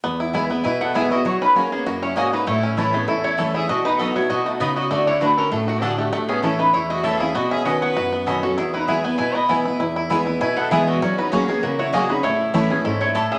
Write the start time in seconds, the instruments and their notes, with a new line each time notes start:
0.04 steel-string acoustic guitar E2, five-string banjo B3
0.20 five-string banjo E4
0.33 steel-string acoustic guitar E3 G#3 B3 E4, mandolin B3 E4 B4 G#5, five-string banjo E4
0.50 five-string banjo B3, steel-string acoustic guitar B3 E4
0.64 steel-string acoustic guitar B2, five-string banjo E4, fiddle B4, resonator guitar played with a steel bar G#5
0.81 five-string banjo B3, fiddle A4, resonator guitar played with a steel bar F#5
0.94 steel-string acoustic guitar E3 G#3 B3 E4, mandolin B3 E4 B4 G#5, five-string banjo E4, fiddle G#4, resonator guitar played with a steel bar E5
1.10 steel-string acoustic guitar B3 E4, five-string banjo E4, fiddle F#4, resonator guitar played with a steel bar D#5
1.25 steel-string acoustic guitar F#3, fiddle F#4, five-string banjo F#4, resonator guitar played with a steel bar C#5
1.42 five-string banjo C#4, fiddle D#4, resonator guitar played with a steel bar B4
1.55 steel-string acoustic guitar F#3 A#3 C#4 G#4, mandolin A#3 F#4 C#5 G#5, fiddle C#4, five-string banjo F#4, resonator guitar played with a steel bar A#4
1.71 five-string banjo A#3, fiddle B3, resonator guitar played with a steel bar G#4
1.85 steel-string acoustic guitar F#2, fiddle C#4, five-string banjo F#4, resonator guitar played with a steel bar A#4
2.02 five-string banjo C#4, fiddle E4, resonator guitar played with a steel bar C#5
2.16 steel-string acoustic guitar G#2, mandolin A#3 F#4 C#5 G#5, five-string banjo A#3, fiddle F#4, resonator guitar played with a steel bar D#5
2.33 fiddle D#4, five-string banjo F#4, resonator guitar played with a steel bar B4
2.47 steel-string acoustic guitar A2, five-string banjo A3, fiddle E4, resonator guitar played with a steel bar C#5
2.63 five-string banjo C#4
2.77 steel-string acoustic guitar E3 A3 C#4 E4, mandolin A3 E4 C#5 A5, five-string banjo E4, fiddle E4, resonator guitar played with a steel bar B4
2.93 five-string banjo A3, fiddle B3, steel-string acoustic guitar C#4 E4, resonator guitar played with a steel bar G#4
3.08 steel-string acoustic guitar E2, fiddle C#4, five-string banjo E4, resonator guitar played with a steel bar A4
3.24 five-string banjo A3, fiddle E4, resonator guitar played with a steel bar C#5
3.38 steel-string acoustic guitar E3 A3 C#4 E4, mandolin A3 E4 C#5 A5, five-string banjo A4
3.54 five-string banjo E4, fiddle G#4, resonator guitar played with a steel bar E5
3.69 steel-string acoustic guitar B2, fiddle F#4, five-string banjo F#4, resonator guitar played with a steel bar D#5
3.85 fiddle D#4, five-string banjo D#4, resonator guitar played with a steel bar B4
3.99 steel-string acoustic guitar F#3 B3 D#4 F#4, mandolin B3 F#4 D#5 B5, fiddle D#4, resonator guitar played with a steel bar A4, five-string banjo A4
4.15 five-string banjo B3, steel-string acoustic guitar D#4 F#4, fiddle E4, resonator guitar played with a steel bar C#5
4.30 steel-string acoustic guitar B2, five-string banjo F#4, fiddle F#4, resonator guitar played with a steel bar D#5
4.45 fiddle A3, five-string banjo D#4, resonator guitar played with a steel bar F#4
4.60 steel-string acoustic guitar C#3, mandolin B3 F#4 D#5 B5, five-string banjo B3, fiddle D#4, resonator guitar played with a steel bar B4
4.76 five-string banjo F#4, fiddle F#4, resonator guitar played with a steel bar D#5
4.90 steel-string acoustic guitar D3, five-string banjo A3, fiddle F#4, resonator guitar played with a steel bar D5
5.06 five-string banjo D4, fiddle E4, resonator guitar played with a steel bar C#5
5.21 steel-string acoustic guitar D3 A3 D4 F#4, mandolin A3 F#4 D5 F#5, fiddle D4, five-string banjo F#4, resonator guitar played with a steel bar B4
5.37 fiddle C#4, five-string banjo A4, resonator guitar played with a steel bar A#4
5.51 steel-string acoustic guitar A2, five-string banjo A3, fiddle D4, resonator guitar played with a steel bar A4
5.67 fiddle A3, five-string banjo F#4, resonator guitar played with a steel bar F#4
5.82 steel-string acoustic guitar D3 A3 D4 F#4, mandolin A3 F#4 D5 F#5, fiddle D4, resonator guitar played with a steel bar G#4, five-string banjo A4
5.98 fiddle A3, five-string banjo A3, resonator guitar played with a steel bar G4
6.13 steel-string acoustic guitar A2, five-string banjo A3, fiddle A3, resonator guitar played with a steel bar F#4
6.28 fiddle B3, five-string banjo C#4, resonator guitar played with a steel bar G#4
6.42 steel-string acoustic guitar E3 A3 C#4 E4, mandolin A3 E4 C#5 A5, fiddle C#4, five-string banjo E4, resonator guitar played with a steel bar A4
6.59 five-string banjo A3, fiddle D#4, resonator guitar played with a steel bar B4
6.73 steel-string acoustic guitar E2, fiddle E4, five-string banjo E4, resonator guitar played with a steel bar C#5
6.90 five-string banjo A3, fiddle F#4, resonator guitar played with a steel bar D#5
7.03 steel-string acoustic guitar E3 A3 C#4 E4, mandolin A3 E4 C#5 A5, five-string banjo A4, fiddle A4, resonator guitar played with a steel bar E5
7.19 steel-string acoustic guitar C#4 E4, five-string banjo E4, fiddle G#4, resonator guitar played with a steel bar F5
7.34 steel-string acoustic guitar B2, five-string banjo B3, fiddle F#4, resonator guitar played with a steel bar D#5
7.51 five-string banjo C#4, fiddle G#4, resonator guitar played with a steel bar E5
7.65 steel-string acoustic guitar B2 D#3 C#4 F#4, mandolin C#4 F#4 D#5 B5, five-string banjo F#4, fiddle B4, resonator guitar played with a steel bar F#5
7.82 five-string banjo B3, fiddle B4, resonator guitar played with a steel bar F#5
7.96 steel-string acoustic guitar F#2, five-string banjo F#4
8.12 five-string banjo B3
8.26 steel-string acoustic guitar B2 D#3 C#4 F#4, mandolin C#4 F#4 D#5 B5, five-string banjo A4
8.43 fiddle C#4, steel-string acoustic guitar C#4 F#4, five-string banjo F#4, resonator guitar played with a steel bar A4
8.58 steel-string acoustic guitar E2, fiddle B3, five-string banjo E4, resonator guitar played with a steel bar G#4
8.74 fiddle D#4, five-string banjo E4, resonator guitar played with a steel bar B4
8.88 steel-string acoustic guitar E3 G#3 B3 E4, mandolin B3 E4 B4 G#5, five-string banjo E4, fiddle G#4, resonator guitar played with a steel bar E5
9.04 five-string banjo B3, steel-string acoustic guitar B3 E4, fiddle B4, resonator guitar played with a steel bar G#5
9.18 steel-string acoustic guitar B2, five-string banjo E4, fiddle B4, resonator guitar played with a steel bar G#5
9.34 five-string banjo B3, fiddle D#5, resonator guitar played with a steel bar B5
9.49 steel-string acoustic guitar E3 G#3 B3 E4, mandolin B3 E4 B4 G#5, five-string banjo E4
9.65 steel-string acoustic guitar B3 E4, five-string banjo E4
9.80 steel-string acoustic guitar E2, five-string banjo E4
9.96 five-string banjo E4
10.10 steel-string acoustic guitar E3 G#3 B3 E4, mandolin B3 E4 B4 G#5, five-string banjo E4
10.26 steel-string acoustic guitar B3 E4, five-string banjo E4
10.41 steel-string acoustic guitar B2, five-string banjo E4, fiddle B4, resonator guitar played with a steel bar G#5
10.56 five-string banjo B3, fiddle A4, resonator guitar played with a steel bar F#5
10.71 steel-string acoustic guitar E3 G#3 B3 E4, mandolin B3 E4 B4 G#5, five-string banjo E4, fiddle G#4, resonator guitar played with a steel bar E5
10.87 five-string banjo B3, fiddle F#4, resonator guitar played with a steel bar D#5
11.02 steel-string acoustic guitar F#3, five-string banjo C#4, fiddle F#4, resonator guitar played with a steel bar C#5
11.18 fiddle D#4, five-string banjo F#4, resonator guitar played with a steel bar B4
11.32 steel-string acoustic guitar F#3 A#3 C#4 G#4, mandolin A#3 F#4 C#5 G#5, fiddle C#4, five-string banjo F#4, resonator guitar played with a steel bar A#4
11.48 five-string banjo A#3, fiddle B3, steel-string acoustic guitar C#4 G#4, resonator guitar played with a steel bar G#4
11.63 steel-string acoustic guitar C#3, fiddle C#4, five-string banjo F#4, resonator guitar played with a steel bar A#4
11.79 fiddle E4, five-string banjo F#4, resonator guitar played with a steel bar C#5
11.93 steel-string acoustic guitar F#3 A#3 C#4 G#4, mandolin A#3 F#4 C#5 G#5, five-string banjo A#3, fiddle F#4, resonator guitar played with a steel bar D#5
12.09 steel-string acoustic guitar C#4 G#4, fiddle D#4, five-string banjo F#4, resonator guitar played with a steel bar B4
12.23 steel-string acoustic guitar A2, five-string banjo A3, fiddle E4, resonator guitar played with a steel bar C#5
12.54 steel-string acoustic guitar E3 A3 C#4 E4, mandolin A3 E4 C#5 A5, five-string banjo A3, fiddle E4, resonator guitar played with a steel bar B4
12.70 fiddle B3, five-string banjo C#4, steel-string acoustic guitar C#4 E4, resonator guitar played with a steel bar G#4
12.85 steel-string acoustic guitar G#2, fiddle C#4, five-string banjo E4, resonator guitar played with a steel bar A4
13.01 five-string banjo A3, fiddle E4, resonator guitar played with a steel bar C#5
13.15 steel-string acoustic guitar A2, mandolin A3 E4 C#5 A5, five-string banjo A4
13.31 five-string banjo C#4, fiddle G#4, resonator guitar played with a steel bar E5